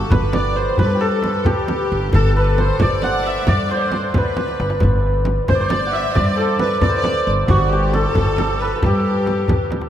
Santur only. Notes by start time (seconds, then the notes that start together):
Already playing: D#4 G4 A4
0.10 B4
0.33 D5
0.56 C5
0.79 B4
0.95 G4
1.01 A4
1.46 G4
2.15 A4
2.31 A4
2.37 B4
2.59 C5
2.82 D5
3.04 F#5
3.27 E5
3.48 D5
3.71 C5
4.17 B4
5.48 C5
5.55 D5
5.60 C5
5.70 D5
5.87 F#5
5.93 E5
6.15 D5
6.37 A4
6.60 B4
6.83 D5
6.89 C5
6.97 D5
7.50 F#4
7.73 G4
7.94 A4
8.02 A4
8.10 A4
8.17 A4
8.24 A4
8.33 A4
8.40 A4
8.47 A4
8.62 B4
8.76 A4
8.86 G4